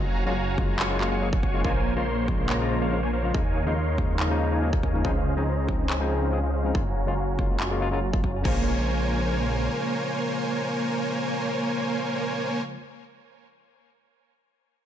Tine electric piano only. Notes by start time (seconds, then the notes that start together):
0.26 C#3 F#3 G#3 A#3 F4
0.57 C#3 F#3 G#3 A#3 F4
0.89 C#3 F#3 G#3 A#3 F4
1.21 C#3 F#3 G#3 A#3 G#4
1.53 C#3 F#3 G#3 A#3 F4
1.64 C#3 F3 G#3 A#3 F4
1.96 C#3 F3 G#3 A#3 F4
2.28 C#3 F3 G#3 A#3 F4
2.60 C#3 F3 G#3 A#3 F4
2.91 C#3 F3 G#3 A#3 A#4
3.23 C#3 F3 G#3 A#3 F4
3.34 C#3 F3 G#3 A#3 D#4
3.66 C#3 F3 G#3 A#3 D#4
3.97 C#3 F3 G#3 A#3 D#4
4.29 C#3 F3 G#3 A#3 D#4
4.61 C#3 F3 G#3 A#3 G#4
4.93 C#3 F3 G#3 A#3 D#4
5.04 C#3 F3 G#3 C4 D#4
5.36 C#3 F3 G#3 C4 D#4
5.67 C#3 F3 G#3 C4 D#4
5.99 C#3 F3 G#3 C4 D#4
6.31 C#3 F3 G#3 C4 G#4
6.64 C#3 F3 G#3 C4 D#4
6.74 C#3 F#3 G#3 A#3 F4
7.06 C#3 F#3 G#3 A#3 F4
7.38 C#3 F#3 G#3 A#3 F4
7.70 C#3 F#3 G#3 A#3 F4
7.80 C#3 F#3 G#3 A#3 F4
7.91 C#3 F#3 G#3 A#3 F4
8.12 C#3 F#3 G#3 A#3 F4
8.42 C#3 F3 G#3
8.47 A#3 F4